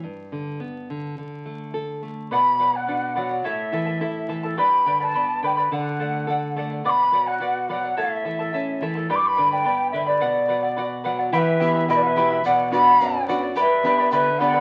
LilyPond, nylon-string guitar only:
\new Staff \with { instrumentName = "Nylon-string guitar" } { \clef bass \time 2/4 \key b \minor \tempo 4 = 107 g,8 d8 b8 d8 | d8 a8 a'8 a8 | b,8 fis8 d'8 fis8 | a,8 e8 e'8 e8 |
g,8 d8 b8 d8 | d8 a8 a'8 a8 | b,8 fis8 fis'8 fis8 | a,8 e8 cis'8 e8 |
g,8 d8 b8 d8 | b,8 fis8 fis'8 fis8 | e8 <b e' g'>8 b,8 <b e' g'>8 | b,8 <b d' fis'>8 fis,8 <b d' fis'>8 |
g,8 <b d' g'>8 d8 <b d' g'>8 | }